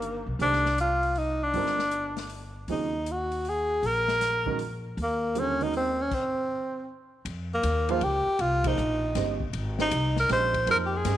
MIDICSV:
0, 0, Header, 1, 5, 480
1, 0, Start_track
1, 0, Tempo, 380228
1, 507, Time_signature, 3, 2, 24, 8
1, 14101, End_track
2, 0, Start_track
2, 0, Title_t, "Grand piano"
2, 0, Program_c, 0, 0
2, 0, Note_on_c, 0, 51, 55
2, 0, Note_on_c, 0, 62, 48
2, 0, Note_on_c, 0, 67, 49
2, 0, Note_on_c, 0, 69, 50
2, 0, Note_on_c, 0, 72, 59
2, 282, Note_off_c, 0, 51, 0
2, 285, Note_off_c, 0, 69, 0
2, 288, Note_off_c, 0, 62, 0
2, 291, Note_off_c, 0, 67, 0
2, 292, Note_off_c, 0, 72, 0
2, 507, Note_on_c, 0, 51, 49
2, 515, Note_on_c, 0, 62, 47
2, 516, Note_on_c, 0, 57, 50
2, 519, Note_on_c, 0, 67, 48
2, 526, Note_on_c, 0, 72, 58
2, 793, Note_off_c, 0, 51, 0
2, 797, Note_off_c, 0, 57, 0
2, 797, Note_off_c, 0, 62, 0
2, 799, Note_off_c, 0, 67, 0
2, 803, Note_off_c, 0, 72, 0
2, 1947, Note_on_c, 0, 50, 58
2, 1955, Note_on_c, 0, 55, 54
2, 1961, Note_on_c, 0, 60, 55
2, 1963, Note_on_c, 0, 65, 54
2, 1974, Note_on_c, 0, 70, 67
2, 2234, Note_off_c, 0, 50, 0
2, 2238, Note_off_c, 0, 55, 0
2, 2241, Note_off_c, 0, 60, 0
2, 2242, Note_off_c, 0, 65, 0
2, 2247, Note_off_c, 0, 70, 0
2, 3397, Note_on_c, 0, 49, 47
2, 3399, Note_on_c, 0, 54, 41
2, 3402, Note_on_c, 0, 60, 43
2, 3404, Note_on_c, 0, 65, 43
2, 3409, Note_on_c, 0, 68, 54
2, 3680, Note_off_c, 0, 49, 0
2, 3681, Note_off_c, 0, 54, 0
2, 3682, Note_off_c, 0, 60, 0
2, 3683, Note_off_c, 0, 65, 0
2, 3686, Note_off_c, 0, 68, 0
2, 5630, Note_on_c, 0, 51, 67
2, 5638, Note_on_c, 0, 56, 57
2, 5639, Note_on_c, 0, 61, 60
2, 5645, Note_on_c, 0, 66, 57
2, 5650, Note_on_c, 0, 70, 72
2, 5778, Note_off_c, 0, 51, 0
2, 5781, Note_off_c, 0, 56, 0
2, 5782, Note_off_c, 0, 61, 0
2, 5785, Note_off_c, 0, 66, 0
2, 5787, Note_off_c, 0, 70, 0
2, 6757, Note_on_c, 0, 50, 56
2, 6757, Note_on_c, 0, 55, 52
2, 6760, Note_on_c, 0, 60, 45
2, 6767, Note_on_c, 0, 65, 48
2, 6776, Note_on_c, 0, 69, 59
2, 7042, Note_off_c, 0, 50, 0
2, 7042, Note_off_c, 0, 55, 0
2, 7043, Note_off_c, 0, 60, 0
2, 7047, Note_off_c, 0, 65, 0
2, 7051, Note_off_c, 0, 69, 0
2, 7080, Note_on_c, 0, 51, 58
2, 7080, Note_on_c, 0, 56, 52
2, 7088, Note_on_c, 0, 66, 52
2, 7091, Note_on_c, 0, 61, 52
2, 7098, Note_on_c, 0, 70, 65
2, 7493, Note_off_c, 0, 51, 0
2, 7493, Note_off_c, 0, 56, 0
2, 7497, Note_off_c, 0, 66, 0
2, 7499, Note_off_c, 0, 61, 0
2, 7502, Note_off_c, 0, 70, 0
2, 9958, Note_on_c, 0, 53, 73
2, 9959, Note_on_c, 0, 58, 67
2, 9967, Note_on_c, 0, 63, 68
2, 9973, Note_on_c, 0, 68, 65
2, 9979, Note_on_c, 0, 72, 83
2, 10102, Note_off_c, 0, 53, 0
2, 10103, Note_off_c, 0, 58, 0
2, 10107, Note_off_c, 0, 63, 0
2, 10110, Note_off_c, 0, 68, 0
2, 10113, Note_off_c, 0, 72, 0
2, 10919, Note_on_c, 0, 53, 58
2, 10925, Note_on_c, 0, 58, 51
2, 10930, Note_on_c, 0, 63, 57
2, 10933, Note_on_c, 0, 68, 54
2, 10940, Note_on_c, 0, 72, 68
2, 11062, Note_off_c, 0, 53, 0
2, 11065, Note_off_c, 0, 58, 0
2, 11067, Note_off_c, 0, 63, 0
2, 11069, Note_off_c, 0, 68, 0
2, 11072, Note_off_c, 0, 72, 0
2, 11554, Note_on_c, 0, 56, 57
2, 11556, Note_on_c, 0, 61, 50
2, 11561, Note_on_c, 0, 67, 52
2, 11566, Note_on_c, 0, 72, 55
2, 11571, Note_on_c, 0, 75, 63
2, 11839, Note_off_c, 0, 56, 0
2, 11839, Note_off_c, 0, 61, 0
2, 11842, Note_off_c, 0, 67, 0
2, 11845, Note_off_c, 0, 72, 0
2, 11847, Note_off_c, 0, 75, 0
2, 12354, Note_on_c, 0, 56, 56
2, 12355, Note_on_c, 0, 61, 55
2, 12363, Note_on_c, 0, 67, 54
2, 12365, Note_on_c, 0, 72, 58
2, 12371, Note_on_c, 0, 75, 62
2, 12498, Note_off_c, 0, 56, 0
2, 12498, Note_off_c, 0, 61, 0
2, 12503, Note_off_c, 0, 67, 0
2, 12503, Note_off_c, 0, 72, 0
2, 12507, Note_off_c, 0, 75, 0
2, 12994, Note_on_c, 0, 56, 61
2, 12998, Note_on_c, 0, 61, 59
2, 13002, Note_on_c, 0, 67, 58
2, 13007, Note_on_c, 0, 72, 59
2, 13014, Note_on_c, 0, 75, 70
2, 13277, Note_off_c, 0, 56, 0
2, 13279, Note_off_c, 0, 61, 0
2, 13281, Note_off_c, 0, 67, 0
2, 13283, Note_off_c, 0, 72, 0
2, 13287, Note_off_c, 0, 75, 0
2, 13479, Note_on_c, 0, 53, 71
2, 13482, Note_on_c, 0, 58, 63
2, 13485, Note_on_c, 0, 63, 64
2, 13494, Note_on_c, 0, 72, 76
2, 13496, Note_on_c, 0, 68, 60
2, 13937, Note_off_c, 0, 53, 0
2, 13938, Note_off_c, 0, 58, 0
2, 13940, Note_off_c, 0, 63, 0
2, 13944, Note_off_c, 0, 72, 0
2, 13945, Note_off_c, 0, 68, 0
2, 13949, Note_on_c, 0, 56, 62
2, 13954, Note_on_c, 0, 61, 56
2, 13963, Note_on_c, 0, 67, 57
2, 13965, Note_on_c, 0, 72, 53
2, 13971, Note_on_c, 0, 75, 65
2, 14101, Note_off_c, 0, 56, 0
2, 14101, Note_off_c, 0, 61, 0
2, 14101, Note_off_c, 0, 67, 0
2, 14101, Note_off_c, 0, 72, 0
2, 14101, Note_off_c, 0, 75, 0
2, 14101, End_track
3, 0, Start_track
3, 0, Title_t, "Tenor saxophone"
3, 0, Program_c, 1, 66
3, 0, Note_on_c, 1, 58, 86
3, 361, Note_off_c, 1, 58, 0
3, 529, Note_on_c, 1, 62, 91
3, 966, Note_off_c, 1, 62, 0
3, 1014, Note_on_c, 1, 65, 96
3, 1492, Note_on_c, 1, 63, 88
3, 1511, Note_off_c, 1, 65, 0
3, 1808, Note_on_c, 1, 62, 84
3, 1827, Note_off_c, 1, 63, 0
3, 2851, Note_off_c, 1, 62, 0
3, 3423, Note_on_c, 1, 63, 75
3, 3930, Note_on_c, 1, 66, 79
3, 3949, Note_off_c, 1, 63, 0
3, 4409, Note_on_c, 1, 68, 83
3, 4428, Note_off_c, 1, 66, 0
3, 4882, Note_on_c, 1, 70, 95
3, 4901, Note_off_c, 1, 68, 0
3, 5819, Note_off_c, 1, 70, 0
3, 6344, Note_on_c, 1, 58, 80
3, 6807, Note_on_c, 1, 61, 90
3, 6826, Note_off_c, 1, 58, 0
3, 7113, Note_on_c, 1, 63, 83
3, 7132, Note_off_c, 1, 61, 0
3, 7254, Note_off_c, 1, 63, 0
3, 7277, Note_on_c, 1, 60, 87
3, 7595, Note_on_c, 1, 61, 81
3, 7614, Note_off_c, 1, 60, 0
3, 7750, Note_on_c, 1, 60, 81
3, 7769, Note_off_c, 1, 61, 0
3, 8693, Note_off_c, 1, 60, 0
3, 9521, Note_on_c, 1, 58, 89
3, 9990, Note_on_c, 1, 65, 88
3, 10009, Note_off_c, 1, 58, 0
3, 10149, Note_on_c, 1, 67, 101
3, 10168, Note_off_c, 1, 65, 0
3, 10619, Note_on_c, 1, 65, 97
3, 10638, Note_off_c, 1, 67, 0
3, 10948, Note_on_c, 1, 63, 88
3, 10967, Note_off_c, 1, 65, 0
3, 11888, Note_off_c, 1, 63, 0
3, 12389, Note_on_c, 1, 63, 92
3, 12816, Note_off_c, 1, 63, 0
3, 12873, Note_on_c, 1, 70, 81
3, 13003, Note_off_c, 1, 70, 0
3, 13033, Note_on_c, 1, 72, 105
3, 13458, Note_off_c, 1, 72, 0
3, 13517, Note_on_c, 1, 70, 99
3, 13596, Note_off_c, 1, 70, 0
3, 13707, Note_on_c, 1, 67, 70
3, 13844, Note_on_c, 1, 68, 84
3, 13863, Note_off_c, 1, 67, 0
3, 14101, Note_off_c, 1, 68, 0
3, 14101, End_track
4, 0, Start_track
4, 0, Title_t, "Upright bass"
4, 0, Program_c, 2, 32
4, 0, Note_on_c, 2, 31, 74
4, 291, Note_off_c, 2, 31, 0
4, 333, Note_on_c, 2, 35, 65
4, 486, Note_off_c, 2, 35, 0
4, 494, Note_on_c, 2, 36, 75
4, 1892, Note_off_c, 2, 36, 0
4, 1941, Note_on_c, 2, 31, 75
4, 3336, Note_off_c, 2, 31, 0
4, 3384, Note_on_c, 2, 39, 72
4, 4779, Note_off_c, 2, 39, 0
4, 4828, Note_on_c, 2, 34, 72
4, 6222, Note_off_c, 2, 34, 0
4, 6277, Note_on_c, 2, 39, 79
4, 7667, Note_off_c, 2, 39, 0
4, 9153, Note_on_c, 2, 41, 77
4, 9620, Note_off_c, 2, 41, 0
4, 9636, Note_on_c, 2, 39, 88
4, 10101, Note_off_c, 2, 39, 0
4, 10113, Note_on_c, 2, 37, 84
4, 10409, Note_off_c, 2, 37, 0
4, 10591, Note_on_c, 2, 36, 81
4, 11058, Note_off_c, 2, 36, 0
4, 11079, Note_on_c, 2, 34, 90
4, 11542, Note_off_c, 2, 34, 0
4, 11551, Note_on_c, 2, 31, 85
4, 12017, Note_off_c, 2, 31, 0
4, 12031, Note_on_c, 2, 32, 79
4, 12497, Note_off_c, 2, 32, 0
4, 12514, Note_on_c, 2, 36, 91
4, 12977, Note_off_c, 2, 36, 0
4, 12985, Note_on_c, 2, 34, 90
4, 13452, Note_off_c, 2, 34, 0
4, 13465, Note_on_c, 2, 41, 82
4, 13932, Note_off_c, 2, 41, 0
4, 13946, Note_on_c, 2, 43, 89
4, 14101, Note_off_c, 2, 43, 0
4, 14101, End_track
5, 0, Start_track
5, 0, Title_t, "Drums"
5, 26, Note_on_c, 9, 42, 42
5, 152, Note_off_c, 9, 42, 0
5, 502, Note_on_c, 9, 46, 39
5, 628, Note_off_c, 9, 46, 0
5, 665, Note_on_c, 9, 38, 24
5, 792, Note_off_c, 9, 38, 0
5, 828, Note_on_c, 9, 38, 34
5, 954, Note_off_c, 9, 38, 0
5, 985, Note_on_c, 9, 42, 48
5, 1112, Note_off_c, 9, 42, 0
5, 1299, Note_on_c, 9, 46, 31
5, 1426, Note_off_c, 9, 46, 0
5, 1458, Note_on_c, 9, 46, 34
5, 1584, Note_off_c, 9, 46, 0
5, 1939, Note_on_c, 9, 46, 39
5, 2066, Note_off_c, 9, 46, 0
5, 2097, Note_on_c, 9, 38, 23
5, 2224, Note_off_c, 9, 38, 0
5, 2258, Note_on_c, 9, 38, 35
5, 2385, Note_off_c, 9, 38, 0
5, 2415, Note_on_c, 9, 42, 48
5, 2541, Note_off_c, 9, 42, 0
5, 2734, Note_on_c, 9, 46, 32
5, 2737, Note_on_c, 9, 38, 32
5, 2861, Note_off_c, 9, 46, 0
5, 2863, Note_off_c, 9, 38, 0
5, 2898, Note_on_c, 9, 46, 36
5, 3024, Note_off_c, 9, 46, 0
5, 3382, Note_on_c, 9, 46, 38
5, 3509, Note_off_c, 9, 46, 0
5, 3867, Note_on_c, 9, 42, 45
5, 3993, Note_off_c, 9, 42, 0
5, 4187, Note_on_c, 9, 46, 30
5, 4313, Note_off_c, 9, 46, 0
5, 4353, Note_on_c, 9, 46, 34
5, 4479, Note_off_c, 9, 46, 0
5, 4835, Note_on_c, 9, 46, 41
5, 4962, Note_off_c, 9, 46, 0
5, 5154, Note_on_c, 9, 38, 42
5, 5280, Note_off_c, 9, 38, 0
5, 5316, Note_on_c, 9, 42, 47
5, 5318, Note_on_c, 9, 38, 34
5, 5442, Note_off_c, 9, 42, 0
5, 5445, Note_off_c, 9, 38, 0
5, 5634, Note_on_c, 9, 36, 45
5, 5760, Note_off_c, 9, 36, 0
5, 5793, Note_on_c, 9, 46, 34
5, 5919, Note_off_c, 9, 46, 0
5, 6283, Note_on_c, 9, 46, 39
5, 6409, Note_off_c, 9, 46, 0
5, 6757, Note_on_c, 9, 42, 46
5, 6883, Note_off_c, 9, 42, 0
5, 7078, Note_on_c, 9, 46, 32
5, 7204, Note_off_c, 9, 46, 0
5, 7239, Note_on_c, 9, 46, 37
5, 7366, Note_off_c, 9, 46, 0
5, 7717, Note_on_c, 9, 49, 60
5, 7719, Note_on_c, 9, 36, 71
5, 7843, Note_off_c, 9, 49, 0
5, 7845, Note_off_c, 9, 36, 0
5, 9158, Note_on_c, 9, 51, 54
5, 9284, Note_off_c, 9, 51, 0
5, 9636, Note_on_c, 9, 44, 50
5, 9636, Note_on_c, 9, 51, 69
5, 9762, Note_off_c, 9, 44, 0
5, 9762, Note_off_c, 9, 51, 0
5, 9955, Note_on_c, 9, 51, 43
5, 10082, Note_off_c, 9, 51, 0
5, 10112, Note_on_c, 9, 51, 51
5, 10238, Note_off_c, 9, 51, 0
5, 10590, Note_on_c, 9, 51, 57
5, 10716, Note_off_c, 9, 51, 0
5, 10908, Note_on_c, 9, 51, 70
5, 10913, Note_on_c, 9, 36, 81
5, 11035, Note_off_c, 9, 51, 0
5, 11040, Note_off_c, 9, 36, 0
5, 11073, Note_on_c, 9, 44, 61
5, 11199, Note_off_c, 9, 44, 0
5, 11552, Note_on_c, 9, 51, 53
5, 11555, Note_on_c, 9, 38, 35
5, 11678, Note_off_c, 9, 51, 0
5, 11681, Note_off_c, 9, 38, 0
5, 11872, Note_on_c, 9, 36, 53
5, 11998, Note_off_c, 9, 36, 0
5, 12034, Note_on_c, 9, 51, 56
5, 12160, Note_off_c, 9, 51, 0
5, 12354, Note_on_c, 9, 38, 46
5, 12481, Note_off_c, 9, 38, 0
5, 12514, Note_on_c, 9, 44, 59
5, 12514, Note_on_c, 9, 51, 74
5, 12641, Note_off_c, 9, 44, 0
5, 12641, Note_off_c, 9, 51, 0
5, 12832, Note_on_c, 9, 38, 46
5, 12958, Note_off_c, 9, 38, 0
5, 12993, Note_on_c, 9, 51, 56
5, 12996, Note_on_c, 9, 38, 33
5, 13119, Note_off_c, 9, 51, 0
5, 13122, Note_off_c, 9, 38, 0
5, 13306, Note_on_c, 9, 36, 55
5, 13309, Note_on_c, 9, 51, 46
5, 13433, Note_off_c, 9, 36, 0
5, 13435, Note_off_c, 9, 51, 0
5, 13471, Note_on_c, 9, 51, 55
5, 13598, Note_off_c, 9, 51, 0
5, 13946, Note_on_c, 9, 44, 56
5, 13946, Note_on_c, 9, 51, 73
5, 13949, Note_on_c, 9, 38, 39
5, 14072, Note_off_c, 9, 44, 0
5, 14072, Note_off_c, 9, 51, 0
5, 14075, Note_off_c, 9, 38, 0
5, 14101, End_track
0, 0, End_of_file